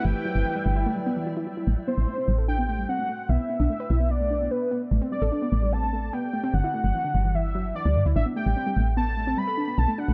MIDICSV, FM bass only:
0, 0, Header, 1, 2, 480
1, 0, Start_track
1, 0, Tempo, 405405
1, 59, Time_signature, 4, 2, 24, 8
1, 12001, End_track
2, 0, Start_track
2, 0, Title_t, "FM bass"
2, 0, Program_c, 0, 39
2, 58, Note_on_c, 0, 31, 101
2, 160, Note_off_c, 0, 31, 0
2, 419, Note_on_c, 0, 31, 93
2, 521, Note_off_c, 0, 31, 0
2, 779, Note_on_c, 0, 31, 98
2, 1019, Note_off_c, 0, 31, 0
2, 1979, Note_on_c, 0, 33, 97
2, 2081, Note_off_c, 0, 33, 0
2, 2340, Note_on_c, 0, 33, 87
2, 2441, Note_off_c, 0, 33, 0
2, 2699, Note_on_c, 0, 33, 98
2, 3390, Note_off_c, 0, 33, 0
2, 3899, Note_on_c, 0, 35, 100
2, 4001, Note_off_c, 0, 35, 0
2, 4260, Note_on_c, 0, 35, 87
2, 4361, Note_off_c, 0, 35, 0
2, 4619, Note_on_c, 0, 35, 95
2, 5310, Note_off_c, 0, 35, 0
2, 5818, Note_on_c, 0, 33, 98
2, 5920, Note_off_c, 0, 33, 0
2, 6179, Note_on_c, 0, 33, 91
2, 6281, Note_off_c, 0, 33, 0
2, 6538, Note_on_c, 0, 33, 99
2, 7229, Note_off_c, 0, 33, 0
2, 7740, Note_on_c, 0, 31, 97
2, 7841, Note_off_c, 0, 31, 0
2, 8100, Note_on_c, 0, 31, 88
2, 8201, Note_off_c, 0, 31, 0
2, 8461, Note_on_c, 0, 31, 98
2, 9150, Note_off_c, 0, 31, 0
2, 9300, Note_on_c, 0, 38, 90
2, 9421, Note_on_c, 0, 43, 93
2, 9439, Note_off_c, 0, 38, 0
2, 9522, Note_off_c, 0, 43, 0
2, 9540, Note_on_c, 0, 38, 78
2, 9641, Note_off_c, 0, 38, 0
2, 9660, Note_on_c, 0, 33, 100
2, 9761, Note_off_c, 0, 33, 0
2, 10019, Note_on_c, 0, 33, 91
2, 10121, Note_off_c, 0, 33, 0
2, 10379, Note_on_c, 0, 33, 98
2, 11069, Note_off_c, 0, 33, 0
2, 11579, Note_on_c, 0, 35, 96
2, 11681, Note_off_c, 0, 35, 0
2, 11940, Note_on_c, 0, 35, 89
2, 12001, Note_off_c, 0, 35, 0
2, 12001, End_track
0, 0, End_of_file